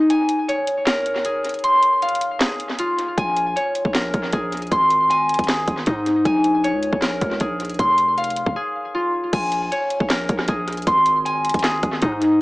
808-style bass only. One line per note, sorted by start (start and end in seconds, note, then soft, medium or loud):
3.18 3.55 A#1 loud
3.85 4.13 A#1 loud
4.14 4.32 A#1 loud
4.33 4.70 A#1 loud
4.72 5.36 G#1 loud
5.39 5.67 G#1 loud
5.68 5.86 G#1 loud
5.87 6.24 G#2 loud
6.25 6.75 A#1 loud
6.73 6.92 C#2 loud
6.93 7.20 A#1 loud
7.21 7.40 C#2 loud
7.41 7.78 A#1 loud
7.79 8.44 F1 loud
8.46 8.56 F1 loud
9.33 9.70 A#1 loud
10.00 10.28 A#1 loud
10.29 10.48 A#1 loud
10.48 10.85 A#1 loud
10.87 11.51 G#1 loud
11.54 11.82 G#1 loud
11.83 12.02 G#1 loud
12.02 12.39 G#2 loud